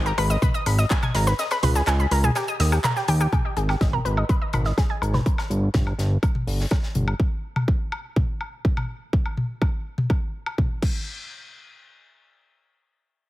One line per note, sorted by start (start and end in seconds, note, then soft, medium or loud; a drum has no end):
0.00 0.13 G#1 loud
0.06 0.09 A#4 loud
0.06 0.09 A#5 medium
0.06 shaker soft
0.18 0.37 G#1 loud
0.18 0.26 B4 loud
0.18 0.26 B5 medium
0.18 closed hi-hat medium
0.18 open hi-hat medium
0.18 low woodblock medium
0.30 0.38 D#5 medium
0.30 0.38 D#6 medium
0.30 shaker medium
0.42 0.48 B4 medium
0.42 0.48 B5 medium
0.42 kick loud
0.42 closed hi-hat medium
0.42 mid tom loud
0.42 shaker medium
0.54 0.60 D#5 medium
0.54 0.60 D#6 medium
0.54 shaker soft
0.66 0.85 G#1 loud
0.66 0.70 B5 medium
0.66 closed hi-hat medium
0.66 open hi-hat loud
0.66 low woodblock medium
0.78 0.84 D#5 medium
0.78 0.84 D#6 medium
0.78 snare soft
0.78 shaker medium
0.90 0.94 G#4 medium
0.90 0.94 G#5 medium
0.90 kick loud
0.90 snare loud
0.90 clap loud
0.90 closed hi-hat medium
0.90 shaker medium
1.03 1.08 G#5 medium
1.03 1.08 G#6 medium
1.03 mid tom medium
1.03 low woodblock medium
1.03 shaker soft
1.15 1.34 G#1 medium
1.15 1.23 A#4 medium
1.15 1.23 A#5 medium
1.15 snare loud
1.15 closed hi-hat medium
1.15 open hi-hat medium
1.27 1.32 B4 medium
1.27 1.32 B5 medium
1.27 snare loud
1.27 closed hi-hat medium
1.27 shaker medium
1.39 1.44 D#5 loud
1.39 1.44 D#6 medium
1.39 snare medium
1.39 closed hi-hat medium
1.39 shaker medium
1.51 1.57 B4 loud
1.51 1.57 B5 medium
1.51 snare loud
1.51 closed hi-hat medium
1.51 low woodblock medium
1.51 shaker soft
1.63 1.82 C#2 loud
1.63 1.69 B4 loud
1.63 1.69 B5 medium
1.63 snare loud
1.63 closed hi-hat medium
1.63 open hi-hat loud
1.63 mid tom medium
1.75 1.79 G#4 medium
1.75 1.79 G#5 medium
1.75 snare loud
1.75 closed hi-hat medium
1.75 shaker medium
1.87 2.06 C#2 loud
1.87 1.93 G#4 medium
1.87 1.93 G#5 medium
1.87 snare loud
1.87 clap loud
1.87 closed hi-hat medium
1.87 low woodblock medium
1.87 shaker medium
2.00 2.05 B5 medium
2.00 shaker soft
2.11 2.30 C#2 loud
2.11 2.20 A#4 medium
2.11 2.20 A#5 medium
2.11 snare soft
2.11 closed hi-hat medium
2.11 open hi-hat medium
2.24 2.29 G#4 loud
2.24 2.29 G#5 medium
2.24 mid tom loud
2.24 shaker medium
2.35 2.44 G4 medium
2.35 2.44 G5 medium
2.35 snare loud
2.35 closed hi-hat medium
2.35 low woodblock medium
2.35 shaker medium
2.48 2.53 D#5 medium
2.48 2.53 D#6 medium
2.48 shaker soft
2.60 2.79 D#2 loud
2.60 2.63 D#5 medium
2.60 2.63 D#6 medium
2.60 snare loud
2.60 closed hi-hat medium
2.60 open hi-hat loud
2.72 2.75 G4 medium
2.72 2.75 G5 medium
2.72 snare medium
2.72 low woodblock medium
2.72 shaker medium
2.84 2.87 A#4 loud
2.84 2.87 A#5 medium
2.84 snare loud
2.84 clap loud
2.84 closed hi-hat medium
2.84 mid tom loud
2.84 shaker medium
2.96 3.02 G4 medium
2.96 3.02 G5 medium
2.96 snare medium
2.96 shaker soft
3.08 3.27 D#2 medium
3.08 3.12 G4 loud
3.08 3.12 G5 medium
3.08 closed hi-hat medium
3.08 open hi-hat medium
3.21 3.26 G4 loud
3.21 3.26 G5 medium
3.21 low woodblock medium
3.21 shaker medium
3.33 3.38 G#4 medium
3.33 kick loud
3.33 closed hi-hat medium
3.33 mid tom loud
3.33 low woodblock medium
3.45 3.50 D#5 medium
3.57 3.76 G#1 loud
3.57 3.62 G#4 medium
3.57 closed hi-hat medium
3.69 3.74 G4 loud
3.69 snare soft
3.69 low woodblock medium
3.81 4.00 G#1 loud
3.81 3.86 D#5 medium
3.81 kick loud
3.81 snare loud
3.81 closed hi-hat medium
3.93 3.96 A#4 loud
3.93 mid tom medium
4.05 4.24 G#1 loud
4.05 4.13 B4 loud
4.05 closed hi-hat medium
4.17 4.25 D#5 medium
4.17 low woodblock soft
4.29 4.35 B4 medium
4.29 kick loud
4.29 closed hi-hat medium
4.42 4.47 D#5 medium
4.53 4.72 G#1 loud
4.53 4.57 B5 medium
4.53 closed hi-hat medium
4.53 mid tom medium
4.53 low woodblock medium
4.64 4.71 D#5 medium
4.64 snare soft
4.78 4.81 G#4 medium
4.78 kick loud
4.78 snare loud
4.78 closed hi-hat medium
4.90 4.95 G#5 medium
5.02 5.21 G#1 medium
5.02 5.10 A#4 medium
5.02 closed hi-hat medium
5.02 low woodblock soft
5.14 5.19 B4 medium
5.14 snare soft
5.14 mid tom medium
5.26 kick loud
5.26 closed hi-hat medium
5.38 snare soft
5.38 low woodblock medium
5.50 5.69 G1 medium
5.50 closed hi-hat medium
5.74 5.93 G1 loud
5.74 kick loud
5.74 snare loud
5.74 closed hi-hat medium
5.74 mid tom medium
5.87 low woodblock soft
5.99 6.17 G1 loud
5.99 snare soft
5.99 closed hi-hat medium
6.23 kick loud
6.23 closed hi-hat medium
6.23 low woodblock medium
6.35 mid tom medium
6.47 6.66 G1 medium
6.47 open hi-hat medium
6.60 snare soft
6.71 kick loud
6.71 snare loud
6.71 closed hi-hat medium
6.71 low woodblock medium
6.83 snare medium
6.95 7.14 G1 medium
6.95 closed hi-hat medium
6.95 mid tom medium
7.08 low woodblock medium
7.20 kick loud
7.56 mid tom medium
7.56 low woodblock soft
7.68 kick loud
7.92 low woodblock medium
8.16 kick loud
8.16 mid tom medium
8.41 low woodblock soft
8.65 kick loud
8.77 mid tom medium
8.77 low woodblock medium
9.13 kick loud
9.26 low woodblock medium
9.37 mid tom medium
9.62 kick loud
9.62 low woodblock medium
9.98 mid tom medium
10.10 kick loud
10.10 low woodblock soft
10.46 low woodblock medium
10.58 kick loud
10.58 mid tom medium
10.82 kick loud
10.82 crash medium